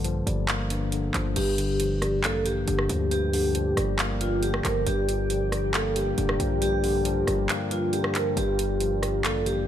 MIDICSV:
0, 0, Header, 1, 6, 480
1, 0, Start_track
1, 0, Key_signature, -2, "minor"
1, 0, Tempo, 437956
1, 1493, Time_signature, 4, 2, 24, 8
1, 10604, End_track
2, 0, Start_track
2, 0, Title_t, "Ambient pad"
2, 0, Program_c, 0, 92
2, 1493, Note_on_c, 0, 70, 76
2, 1494, Note_on_c, 0, 65, 80
2, 1495, Note_on_c, 0, 74, 75
2, 1495, Note_on_c, 0, 79, 90
2, 9130, Note_off_c, 0, 74, 0
2, 9175, Note_on_c, 0, 74, 75
2, 10604, Note_off_c, 0, 65, 0
2, 10604, Note_off_c, 0, 70, 0
2, 10604, Note_off_c, 0, 74, 0
2, 10604, Note_off_c, 0, 79, 0
2, 10604, End_track
3, 0, Start_track
3, 0, Title_t, "Vibraphone"
3, 0, Program_c, 1, 11
3, 1491, Note_on_c, 1, 67, 103
3, 2408, Note_off_c, 1, 67, 0
3, 2450, Note_on_c, 1, 69, 84
3, 2665, Note_off_c, 1, 69, 0
3, 2694, Note_on_c, 1, 67, 93
3, 3370, Note_off_c, 1, 67, 0
3, 3413, Note_on_c, 1, 67, 111
3, 4329, Note_off_c, 1, 67, 0
3, 4614, Note_on_c, 1, 65, 85
3, 4828, Note_off_c, 1, 65, 0
3, 4854, Note_on_c, 1, 67, 89
3, 5067, Note_off_c, 1, 67, 0
3, 5094, Note_on_c, 1, 70, 80
3, 5308, Note_off_c, 1, 70, 0
3, 5335, Note_on_c, 1, 67, 100
3, 6250, Note_off_c, 1, 67, 0
3, 6294, Note_on_c, 1, 69, 88
3, 6508, Note_off_c, 1, 69, 0
3, 6531, Note_on_c, 1, 67, 88
3, 7208, Note_off_c, 1, 67, 0
3, 7253, Note_on_c, 1, 67, 102
3, 8169, Note_off_c, 1, 67, 0
3, 8452, Note_on_c, 1, 65, 92
3, 8667, Note_off_c, 1, 65, 0
3, 8689, Note_on_c, 1, 67, 89
3, 8905, Note_off_c, 1, 67, 0
3, 8931, Note_on_c, 1, 70, 86
3, 9146, Note_off_c, 1, 70, 0
3, 9171, Note_on_c, 1, 67, 103
3, 10088, Note_off_c, 1, 67, 0
3, 10130, Note_on_c, 1, 69, 84
3, 10345, Note_off_c, 1, 69, 0
3, 10371, Note_on_c, 1, 67, 92
3, 10604, Note_off_c, 1, 67, 0
3, 10604, End_track
4, 0, Start_track
4, 0, Title_t, "Tine electric piano"
4, 0, Program_c, 2, 4
4, 0, Control_c, 2, 64, 127
4, 0, Note_on_c, 2, 43, 94
4, 0, Note_on_c, 2, 50, 89
4, 0, Note_on_c, 2, 53, 76
4, 0, Note_on_c, 2, 55, 88
4, 0, Note_on_c, 2, 58, 100
4, 52, Note_off_c, 2, 53, 0
4, 52, Note_on_c, 2, 53, 88
4, 293, Note_off_c, 2, 55, 0
4, 293, Note_on_c, 2, 55, 86
4, 531, Note_off_c, 2, 58, 0
4, 531, Note_on_c, 2, 58, 101
4, 760, Note_off_c, 2, 43, 0
4, 773, Note_on_c, 2, 43, 83
4, 1000, Note_off_c, 2, 50, 0
4, 1014, Note_on_c, 2, 50, 84
4, 1238, Note_off_c, 2, 53, 0
4, 1251, Note_on_c, 2, 53, 87
4, 1479, Note_off_c, 2, 43, 0
4, 1492, Note_off_c, 2, 53, 0
4, 1492, Note_off_c, 2, 58, 0
4, 1493, Note_off_c, 2, 50, 0
4, 1493, Note_off_c, 2, 55, 0
4, 1493, Note_on_c, 2, 43, 100
4, 1509, Control_c, 2, 64, 0
4, 1671, Control_c, 2, 64, 127
4, 1732, Note_on_c, 2, 50, 80
4, 1975, Note_on_c, 2, 53, 84
4, 2212, Note_on_c, 2, 55, 91
4, 2455, Note_on_c, 2, 58, 97
4, 2680, Note_off_c, 2, 43, 0
4, 2693, Note_on_c, 2, 43, 78
4, 2918, Note_off_c, 2, 50, 0
4, 2931, Note_on_c, 2, 50, 93
4, 3159, Note_off_c, 2, 53, 0
4, 3172, Note_on_c, 2, 53, 80
4, 3397, Note_off_c, 2, 43, 0
4, 3410, Note_on_c, 2, 43, 99
4, 3412, Note_off_c, 2, 55, 0
4, 3640, Note_off_c, 2, 50, 0
4, 3653, Note_on_c, 2, 50, 88
4, 3654, Note_off_c, 2, 58, 0
4, 3880, Note_off_c, 2, 53, 0
4, 3893, Note_on_c, 2, 53, 85
4, 4133, Note_on_c, 2, 55, 88
4, 4374, Note_on_c, 2, 58, 99
4, 4601, Note_off_c, 2, 43, 0
4, 4614, Note_on_c, 2, 43, 82
4, 4837, Note_off_c, 2, 50, 0
4, 4850, Note_on_c, 2, 50, 84
4, 5077, Note_off_c, 2, 53, 0
4, 5090, Note_on_c, 2, 53, 87
4, 5319, Note_off_c, 2, 43, 0
4, 5331, Note_off_c, 2, 50, 0
4, 5331, Note_off_c, 2, 53, 0
4, 5332, Note_on_c, 2, 43, 92
4, 5333, Note_off_c, 2, 55, 0
4, 5333, Note_off_c, 2, 58, 0
4, 5348, Control_c, 2, 64, 0
4, 5564, Control_c, 2, 64, 127
4, 5574, Note_on_c, 2, 50, 89
4, 5813, Note_on_c, 2, 53, 84
4, 6053, Note_on_c, 2, 55, 91
4, 6292, Note_on_c, 2, 58, 103
4, 6520, Note_off_c, 2, 43, 0
4, 6533, Note_on_c, 2, 43, 77
4, 6759, Note_off_c, 2, 50, 0
4, 6772, Note_on_c, 2, 50, 92
4, 6999, Note_off_c, 2, 53, 0
4, 7012, Note_on_c, 2, 53, 82
4, 7238, Note_off_c, 2, 43, 0
4, 7251, Note_on_c, 2, 43, 97
4, 7253, Note_off_c, 2, 55, 0
4, 7480, Note_off_c, 2, 50, 0
4, 7492, Note_off_c, 2, 58, 0
4, 7494, Note_on_c, 2, 50, 91
4, 7718, Note_off_c, 2, 53, 0
4, 7731, Note_on_c, 2, 53, 93
4, 7972, Note_on_c, 2, 55, 92
4, 8210, Note_on_c, 2, 58, 102
4, 8438, Note_off_c, 2, 43, 0
4, 8451, Note_on_c, 2, 43, 86
4, 8679, Note_off_c, 2, 50, 0
4, 8692, Note_on_c, 2, 50, 85
4, 8918, Note_off_c, 2, 53, 0
4, 8931, Note_on_c, 2, 53, 85
4, 9159, Note_off_c, 2, 43, 0
4, 9171, Note_off_c, 2, 58, 0
4, 9172, Note_off_c, 2, 50, 0
4, 9172, Note_off_c, 2, 53, 0
4, 9172, Note_off_c, 2, 55, 0
4, 9173, Note_on_c, 2, 43, 98
4, 9188, Control_c, 2, 64, 0
4, 9348, Control_c, 2, 64, 127
4, 9413, Note_on_c, 2, 50, 81
4, 9656, Note_on_c, 2, 53, 84
4, 9891, Note_on_c, 2, 55, 88
4, 10134, Note_on_c, 2, 58, 97
4, 10359, Note_off_c, 2, 43, 0
4, 10372, Note_on_c, 2, 43, 80
4, 10599, Note_off_c, 2, 50, 0
4, 10604, Note_off_c, 2, 43, 0
4, 10604, Note_off_c, 2, 53, 0
4, 10604, Note_off_c, 2, 55, 0
4, 10604, Note_off_c, 2, 58, 0
4, 10604, End_track
5, 0, Start_track
5, 0, Title_t, "808-style bass"
5, 0, Program_c, 3, 38
5, 0, Note_on_c, 3, 34, 107
5, 254, Note_off_c, 3, 34, 0
5, 292, Note_on_c, 3, 31, 105
5, 1214, Note_off_c, 3, 31, 0
5, 1253, Note_on_c, 3, 31, 103
5, 1483, Note_off_c, 3, 31, 0
5, 1493, Note_on_c, 3, 31, 108
5, 2454, Note_on_c, 3, 33, 101
5, 2470, Note_off_c, 3, 31, 0
5, 2909, Note_off_c, 3, 33, 0
5, 2933, Note_on_c, 3, 31, 111
5, 3163, Note_off_c, 3, 31, 0
5, 3173, Note_on_c, 3, 38, 106
5, 4094, Note_off_c, 3, 38, 0
5, 4133, Note_on_c, 3, 31, 111
5, 5054, Note_off_c, 3, 31, 0
5, 5093, Note_on_c, 3, 31, 110
5, 5323, Note_off_c, 3, 31, 0
5, 5332, Note_on_c, 3, 31, 117
5, 6729, Note_off_c, 3, 31, 0
5, 6772, Note_on_c, 3, 29, 112
5, 7003, Note_off_c, 3, 29, 0
5, 7013, Note_on_c, 3, 34, 108
5, 7934, Note_off_c, 3, 34, 0
5, 7972, Note_on_c, 3, 31, 104
5, 8203, Note_off_c, 3, 31, 0
5, 9172, Note_on_c, 3, 31, 110
5, 10133, Note_on_c, 3, 33, 97
5, 10149, Note_off_c, 3, 31, 0
5, 10589, Note_off_c, 3, 33, 0
5, 10604, End_track
6, 0, Start_track
6, 0, Title_t, "Drums"
6, 49, Note_on_c, 9, 42, 74
6, 159, Note_off_c, 9, 42, 0
6, 295, Note_on_c, 9, 42, 69
6, 405, Note_off_c, 9, 42, 0
6, 532, Note_on_c, 9, 39, 123
6, 534, Note_on_c, 9, 42, 86
6, 641, Note_off_c, 9, 39, 0
6, 643, Note_off_c, 9, 42, 0
6, 771, Note_on_c, 9, 42, 79
6, 881, Note_off_c, 9, 42, 0
6, 1011, Note_on_c, 9, 42, 73
6, 1120, Note_off_c, 9, 42, 0
6, 1252, Note_on_c, 9, 39, 69
6, 1253, Note_on_c, 9, 42, 72
6, 1361, Note_off_c, 9, 39, 0
6, 1363, Note_off_c, 9, 42, 0
6, 1492, Note_on_c, 9, 42, 82
6, 1492, Note_on_c, 9, 49, 103
6, 1602, Note_off_c, 9, 42, 0
6, 1602, Note_off_c, 9, 49, 0
6, 1734, Note_on_c, 9, 42, 80
6, 1843, Note_off_c, 9, 42, 0
6, 1969, Note_on_c, 9, 42, 75
6, 2079, Note_off_c, 9, 42, 0
6, 2212, Note_on_c, 9, 37, 70
6, 2215, Note_on_c, 9, 42, 69
6, 2322, Note_off_c, 9, 37, 0
6, 2325, Note_off_c, 9, 42, 0
6, 2452, Note_on_c, 9, 39, 127
6, 2454, Note_on_c, 9, 42, 93
6, 2562, Note_off_c, 9, 39, 0
6, 2564, Note_off_c, 9, 42, 0
6, 2692, Note_on_c, 9, 42, 80
6, 2801, Note_off_c, 9, 42, 0
6, 2932, Note_on_c, 9, 42, 74
6, 3042, Note_off_c, 9, 42, 0
6, 3053, Note_on_c, 9, 37, 94
6, 3163, Note_off_c, 9, 37, 0
6, 3173, Note_on_c, 9, 42, 79
6, 3282, Note_off_c, 9, 42, 0
6, 3413, Note_on_c, 9, 42, 85
6, 3522, Note_off_c, 9, 42, 0
6, 3655, Note_on_c, 9, 46, 82
6, 3764, Note_off_c, 9, 46, 0
6, 3890, Note_on_c, 9, 42, 77
6, 3999, Note_off_c, 9, 42, 0
6, 4133, Note_on_c, 9, 37, 69
6, 4136, Note_on_c, 9, 42, 69
6, 4242, Note_off_c, 9, 37, 0
6, 4245, Note_off_c, 9, 42, 0
6, 4372, Note_on_c, 9, 39, 122
6, 4374, Note_on_c, 9, 42, 94
6, 4482, Note_off_c, 9, 39, 0
6, 4484, Note_off_c, 9, 42, 0
6, 4612, Note_on_c, 9, 42, 80
6, 4722, Note_off_c, 9, 42, 0
6, 4851, Note_on_c, 9, 42, 73
6, 4960, Note_off_c, 9, 42, 0
6, 4974, Note_on_c, 9, 37, 95
6, 5083, Note_off_c, 9, 37, 0
6, 5093, Note_on_c, 9, 39, 74
6, 5094, Note_on_c, 9, 42, 78
6, 5202, Note_off_c, 9, 39, 0
6, 5204, Note_off_c, 9, 42, 0
6, 5332, Note_on_c, 9, 42, 85
6, 5442, Note_off_c, 9, 42, 0
6, 5574, Note_on_c, 9, 42, 81
6, 5684, Note_off_c, 9, 42, 0
6, 5809, Note_on_c, 9, 42, 79
6, 5919, Note_off_c, 9, 42, 0
6, 6052, Note_on_c, 9, 37, 68
6, 6055, Note_on_c, 9, 42, 70
6, 6162, Note_off_c, 9, 37, 0
6, 6165, Note_off_c, 9, 42, 0
6, 6293, Note_on_c, 9, 39, 126
6, 6295, Note_on_c, 9, 42, 91
6, 6402, Note_off_c, 9, 39, 0
6, 6404, Note_off_c, 9, 42, 0
6, 6531, Note_on_c, 9, 42, 81
6, 6641, Note_off_c, 9, 42, 0
6, 6771, Note_on_c, 9, 42, 73
6, 6880, Note_off_c, 9, 42, 0
6, 6894, Note_on_c, 9, 37, 98
6, 7003, Note_off_c, 9, 37, 0
6, 7013, Note_on_c, 9, 42, 75
6, 7123, Note_off_c, 9, 42, 0
6, 7253, Note_on_c, 9, 42, 85
6, 7362, Note_off_c, 9, 42, 0
6, 7493, Note_on_c, 9, 46, 79
6, 7603, Note_off_c, 9, 46, 0
6, 7729, Note_on_c, 9, 42, 76
6, 7838, Note_off_c, 9, 42, 0
6, 7972, Note_on_c, 9, 37, 67
6, 7975, Note_on_c, 9, 42, 72
6, 8082, Note_off_c, 9, 37, 0
6, 8085, Note_off_c, 9, 42, 0
6, 8212, Note_on_c, 9, 39, 127
6, 8214, Note_on_c, 9, 42, 91
6, 8322, Note_off_c, 9, 39, 0
6, 8324, Note_off_c, 9, 42, 0
6, 8451, Note_on_c, 9, 42, 79
6, 8561, Note_off_c, 9, 42, 0
6, 8691, Note_on_c, 9, 42, 76
6, 8800, Note_off_c, 9, 42, 0
6, 8813, Note_on_c, 9, 37, 96
6, 8923, Note_off_c, 9, 37, 0
6, 8932, Note_on_c, 9, 39, 74
6, 8933, Note_on_c, 9, 42, 77
6, 9041, Note_off_c, 9, 39, 0
6, 9043, Note_off_c, 9, 42, 0
6, 9173, Note_on_c, 9, 42, 83
6, 9282, Note_off_c, 9, 42, 0
6, 9414, Note_on_c, 9, 42, 80
6, 9524, Note_off_c, 9, 42, 0
6, 9650, Note_on_c, 9, 42, 75
6, 9760, Note_off_c, 9, 42, 0
6, 9893, Note_on_c, 9, 37, 68
6, 9896, Note_on_c, 9, 42, 69
6, 10003, Note_off_c, 9, 37, 0
6, 10006, Note_off_c, 9, 42, 0
6, 10133, Note_on_c, 9, 39, 125
6, 10135, Note_on_c, 9, 42, 91
6, 10242, Note_off_c, 9, 39, 0
6, 10245, Note_off_c, 9, 42, 0
6, 10372, Note_on_c, 9, 42, 78
6, 10482, Note_off_c, 9, 42, 0
6, 10604, End_track
0, 0, End_of_file